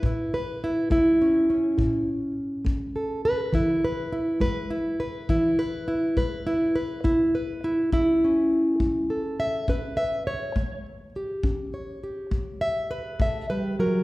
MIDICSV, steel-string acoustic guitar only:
0, 0, Header, 1, 2, 480
1, 0, Start_track
1, 0, Tempo, 585366
1, 25, Time_signature, 12, 3, 24, 8
1, 11507, End_track
2, 0, Start_track
2, 0, Title_t, "Steel-string acoustic guitar"
2, 0, Program_c, 0, 25
2, 21, Note_on_c, 0, 45, 77
2, 47, Note_on_c, 0, 64, 78
2, 276, Note_off_c, 0, 64, 0
2, 278, Note_on_c, 0, 71, 77
2, 455, Note_off_c, 0, 45, 0
2, 512, Note_off_c, 0, 71, 0
2, 523, Note_on_c, 0, 64, 90
2, 740, Note_on_c, 0, 57, 67
2, 742, Note_off_c, 0, 64, 0
2, 752, Note_on_c, 0, 64, 95
2, 997, Note_on_c, 0, 61, 48
2, 1175, Note_off_c, 0, 57, 0
2, 1219, Note_off_c, 0, 61, 0
2, 1229, Note_on_c, 0, 61, 46
2, 1456, Note_on_c, 0, 45, 78
2, 1708, Note_off_c, 0, 64, 0
2, 1893, Note_off_c, 0, 45, 0
2, 2170, Note_on_c, 0, 57, 64
2, 2425, Note_on_c, 0, 69, 43
2, 2609, Note_off_c, 0, 57, 0
2, 2663, Note_off_c, 0, 69, 0
2, 2666, Note_on_c, 0, 71, 101
2, 2878, Note_off_c, 0, 61, 0
2, 2890, Note_on_c, 0, 52, 72
2, 2905, Note_off_c, 0, 71, 0
2, 2908, Note_on_c, 0, 64, 81
2, 3146, Note_off_c, 0, 64, 0
2, 3153, Note_on_c, 0, 71, 83
2, 3329, Note_off_c, 0, 52, 0
2, 3382, Note_on_c, 0, 64, 76
2, 3388, Note_off_c, 0, 71, 0
2, 3610, Note_on_c, 0, 56, 63
2, 3619, Note_on_c, 0, 71, 106
2, 3623, Note_off_c, 0, 64, 0
2, 3858, Note_on_c, 0, 64, 80
2, 3861, Note_off_c, 0, 71, 0
2, 4049, Note_off_c, 0, 56, 0
2, 4099, Note_on_c, 0, 71, 84
2, 4101, Note_off_c, 0, 64, 0
2, 4341, Note_off_c, 0, 71, 0
2, 4341, Note_on_c, 0, 52, 70
2, 4344, Note_on_c, 0, 64, 99
2, 4583, Note_off_c, 0, 64, 0
2, 4583, Note_on_c, 0, 71, 104
2, 4774, Note_off_c, 0, 52, 0
2, 4820, Note_on_c, 0, 64, 82
2, 4823, Note_off_c, 0, 71, 0
2, 5061, Note_off_c, 0, 64, 0
2, 5063, Note_on_c, 0, 71, 82
2, 5071, Note_on_c, 0, 56, 59
2, 5302, Note_on_c, 0, 64, 94
2, 5303, Note_off_c, 0, 71, 0
2, 5498, Note_off_c, 0, 56, 0
2, 5539, Note_on_c, 0, 71, 90
2, 5542, Note_off_c, 0, 64, 0
2, 5773, Note_on_c, 0, 57, 69
2, 5775, Note_on_c, 0, 64, 80
2, 5781, Note_off_c, 0, 71, 0
2, 6018, Note_off_c, 0, 64, 0
2, 6026, Note_on_c, 0, 71, 73
2, 6210, Note_off_c, 0, 57, 0
2, 6264, Note_off_c, 0, 71, 0
2, 6267, Note_on_c, 0, 64, 82
2, 6493, Note_off_c, 0, 64, 0
2, 6501, Note_on_c, 0, 61, 58
2, 6504, Note_on_c, 0, 64, 90
2, 6741, Note_off_c, 0, 61, 0
2, 6760, Note_on_c, 0, 61, 45
2, 7217, Note_on_c, 0, 57, 76
2, 7462, Note_off_c, 0, 64, 0
2, 7463, Note_on_c, 0, 69, 44
2, 7651, Note_off_c, 0, 57, 0
2, 7705, Note_on_c, 0, 76, 103
2, 7937, Note_off_c, 0, 61, 0
2, 7942, Note_off_c, 0, 69, 0
2, 7943, Note_off_c, 0, 76, 0
2, 7946, Note_on_c, 0, 61, 58
2, 7950, Note_on_c, 0, 71, 81
2, 8175, Note_on_c, 0, 76, 107
2, 8185, Note_off_c, 0, 71, 0
2, 8376, Note_off_c, 0, 61, 0
2, 8418, Note_off_c, 0, 76, 0
2, 8421, Note_on_c, 0, 73, 97
2, 8662, Note_on_c, 0, 57, 75
2, 8901, Note_off_c, 0, 73, 0
2, 9094, Note_off_c, 0, 57, 0
2, 9153, Note_on_c, 0, 67, 47
2, 9382, Note_on_c, 0, 61, 59
2, 9625, Note_on_c, 0, 73, 44
2, 9814, Note_off_c, 0, 61, 0
2, 9859, Note_off_c, 0, 67, 0
2, 9869, Note_on_c, 0, 67, 43
2, 10096, Note_on_c, 0, 57, 76
2, 10339, Note_off_c, 0, 73, 0
2, 10342, Note_on_c, 0, 76, 104
2, 10531, Note_off_c, 0, 57, 0
2, 10582, Note_off_c, 0, 76, 0
2, 10583, Note_on_c, 0, 71, 93
2, 10823, Note_off_c, 0, 71, 0
2, 10825, Note_on_c, 0, 57, 59
2, 10837, Note_on_c, 0, 76, 86
2, 11064, Note_off_c, 0, 57, 0
2, 11069, Note_on_c, 0, 71, 93
2, 11070, Note_off_c, 0, 76, 0
2, 11073, Note_on_c, 0, 55, 60
2, 11306, Note_off_c, 0, 71, 0
2, 11308, Note_off_c, 0, 55, 0
2, 11311, Note_on_c, 0, 54, 57
2, 11316, Note_on_c, 0, 70, 83
2, 11507, Note_off_c, 0, 54, 0
2, 11507, Note_off_c, 0, 67, 0
2, 11507, Note_off_c, 0, 70, 0
2, 11507, End_track
0, 0, End_of_file